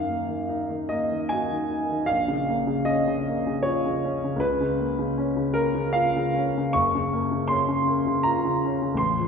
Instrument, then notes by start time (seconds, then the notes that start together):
grand piano
Already playing: F#2 D#3 F5
0.09 A#3
0.29 D#3
0.49 D#4
0.70 D#3
0.89 A#3 D#5
1.12 D#3
1.29 F#4 G#5
1.51 D#3
1.70 D#4
1.91 D#3
2.06 A#1 F5
2.28 C#3
2.48 A#3
2.67 C#3
2.85 C#4 D#5
3.07 C#3
3.27 A#3
3.47 C#3
3.63 F4 C#5
3.86 C#3
4.05 C#4
4.24 C#3
4.36 C#2 B4
4.61 C#3
4.80 A#3
4.99 C#3
5.18 C#4
5.37 C#3
5.54 A#3 A#4
5.75 C#3
5.93 F4 F5
6.16 C#3
6.36 C#4
6.58 C#3
6.73 F#1 C#6
6.95 C#3
7.13 A#3
7.31 C#3
7.48 C#4 C6
7.68 C#3
7.87 A#3
8.06 C#3
8.23 F4 A#5
8.45 C#3
8.65 C#4
8.82 C#3
8.94 A1 C6
9.18 F3